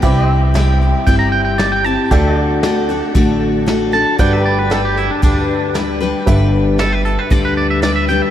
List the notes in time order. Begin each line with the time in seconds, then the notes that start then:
Already playing: G5
0.02 C2 C3 G3 C4 E4 G4 B4 C5 D5 E5, kick, closed hi-hat
0.24 C5
0.30 E5
0.54 G3 C4 E4 G4, snare, closed hi-hat
0.81 closed hi-hat
1.07 G1 C3 G3 C4 E4 G4 G5, kick, closed hi-hat
1.19 A#5
1.32 G5
1.45 G5
1.58 G3 C4 E4 G4 D5, snare, closed hi-hat
1.72 G5
1.84 C4 E4 G4 A5, closed hi-hat
2.11 D2 D3 A3 D4 F#4 G4 A4 D5 E5, kick, closed hi-hat
2.31 F#4
2.38 D5
2.63 A3 D4 F#4 A4, snare, closed hi-hat
2.89 D4 F#4 A4, closed hi-hat
3.15 A1 D3 A3 D4 F#4 A4, kick, closed hi-hat
3.66 A3 D4 F#4 A4, snare, closed hi-hat
3.92 D4 F#4 A4 A5, closed hi-hat
4.18 G1 G2 D3 G3 D4 F#4 G4 A4 B4 D5 G5, kick, closed hi-hat
4.33 E5
4.39 G4
4.45 B4 D5
4.59 B4
4.70 G3 D4 G4 A4 B4, snare, closed hi-hat
4.85 G4
4.97 E4, closed hi-hat
5.11 D4
5.22 D2 G2 D3 G3 D4 G4 B4, kick, closed hi-hat
5.74 G3 D4 G4 B4, snare, closed hi-hat
6.00 G3 D4 G4 B4, closed hi-hat
6.26 G1 G2 D3 G3 D4 G4 B4 E5, kick, closed hi-hat
6.78 G3 D4 G4 A4 B4, snare, closed hi-hat
6.93 B4
7.05 A4, closed hi-hat
7.19 B4
7.30 D2 G2 D3 G3 D4 G4 B4 D5, kick, closed hi-hat
7.45 B4
7.57 D5
7.70 E5
7.82 G3 D4 G4 B4 D5, snare, closed hi-hat
7.96 E5
8.08 G3 D4 G4 B4 G5, closed hi-hat
8.22 E5